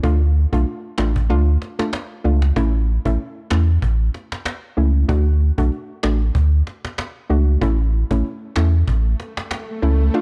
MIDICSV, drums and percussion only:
0, 0, Header, 1, 2, 480
1, 0, Start_track
1, 0, Key_signature, 3, "major"
1, 0, Tempo, 631579
1, 27, Time_signature, 4, 2, 24, 8
1, 7763, End_track
2, 0, Start_track
2, 0, Title_t, "Cajon"
2, 27, Note_on_c, 9, 36, 104
2, 103, Note_off_c, 9, 36, 0
2, 401, Note_on_c, 9, 36, 91
2, 477, Note_off_c, 9, 36, 0
2, 743, Note_on_c, 9, 38, 83
2, 746, Note_off_c, 9, 38, 0
2, 746, Note_on_c, 9, 38, 108
2, 822, Note_off_c, 9, 38, 0
2, 881, Note_on_c, 9, 36, 90
2, 957, Note_off_c, 9, 36, 0
2, 1229, Note_on_c, 9, 38, 61
2, 1305, Note_off_c, 9, 38, 0
2, 1363, Note_on_c, 9, 38, 99
2, 1439, Note_off_c, 9, 38, 0
2, 1466, Note_on_c, 9, 38, 86
2, 1469, Note_off_c, 9, 38, 0
2, 1469, Note_on_c, 9, 38, 114
2, 1545, Note_off_c, 9, 38, 0
2, 1840, Note_on_c, 9, 38, 71
2, 1916, Note_off_c, 9, 38, 0
2, 1947, Note_on_c, 9, 36, 112
2, 2023, Note_off_c, 9, 36, 0
2, 2322, Note_on_c, 9, 36, 92
2, 2398, Note_off_c, 9, 36, 0
2, 2663, Note_on_c, 9, 38, 86
2, 2666, Note_off_c, 9, 38, 0
2, 2666, Note_on_c, 9, 38, 107
2, 2742, Note_off_c, 9, 38, 0
2, 2906, Note_on_c, 9, 36, 95
2, 2982, Note_off_c, 9, 36, 0
2, 3149, Note_on_c, 9, 38, 61
2, 3225, Note_off_c, 9, 38, 0
2, 3283, Note_on_c, 9, 38, 97
2, 3359, Note_off_c, 9, 38, 0
2, 3386, Note_on_c, 9, 38, 92
2, 3389, Note_off_c, 9, 38, 0
2, 3389, Note_on_c, 9, 38, 112
2, 3465, Note_off_c, 9, 38, 0
2, 3867, Note_on_c, 9, 36, 107
2, 3943, Note_off_c, 9, 36, 0
2, 4106, Note_on_c, 9, 38, 27
2, 4182, Note_off_c, 9, 38, 0
2, 4242, Note_on_c, 9, 36, 92
2, 4318, Note_off_c, 9, 36, 0
2, 4349, Note_on_c, 9, 38, 41
2, 4425, Note_off_c, 9, 38, 0
2, 4583, Note_on_c, 9, 38, 89
2, 4586, Note_off_c, 9, 38, 0
2, 4586, Note_on_c, 9, 38, 108
2, 4662, Note_off_c, 9, 38, 0
2, 4825, Note_on_c, 9, 36, 94
2, 4901, Note_off_c, 9, 36, 0
2, 5069, Note_on_c, 9, 38, 60
2, 5145, Note_off_c, 9, 38, 0
2, 5203, Note_on_c, 9, 38, 98
2, 5279, Note_off_c, 9, 38, 0
2, 5306, Note_on_c, 9, 38, 92
2, 5309, Note_off_c, 9, 38, 0
2, 5309, Note_on_c, 9, 38, 114
2, 5385, Note_off_c, 9, 38, 0
2, 5548, Note_on_c, 9, 38, 28
2, 5624, Note_off_c, 9, 38, 0
2, 5787, Note_on_c, 9, 36, 112
2, 5863, Note_off_c, 9, 36, 0
2, 6026, Note_on_c, 9, 38, 27
2, 6102, Note_off_c, 9, 38, 0
2, 6161, Note_on_c, 9, 36, 93
2, 6237, Note_off_c, 9, 36, 0
2, 6268, Note_on_c, 9, 38, 43
2, 6344, Note_off_c, 9, 38, 0
2, 6502, Note_on_c, 9, 38, 89
2, 6506, Note_off_c, 9, 38, 0
2, 6506, Note_on_c, 9, 38, 110
2, 6582, Note_off_c, 9, 38, 0
2, 6745, Note_on_c, 9, 36, 100
2, 6821, Note_off_c, 9, 36, 0
2, 6989, Note_on_c, 9, 38, 61
2, 7065, Note_off_c, 9, 38, 0
2, 7123, Note_on_c, 9, 38, 99
2, 7199, Note_off_c, 9, 38, 0
2, 7226, Note_on_c, 9, 38, 95
2, 7229, Note_off_c, 9, 38, 0
2, 7229, Note_on_c, 9, 38, 112
2, 7305, Note_off_c, 9, 38, 0
2, 7469, Note_on_c, 9, 38, 27
2, 7545, Note_off_c, 9, 38, 0
2, 7763, End_track
0, 0, End_of_file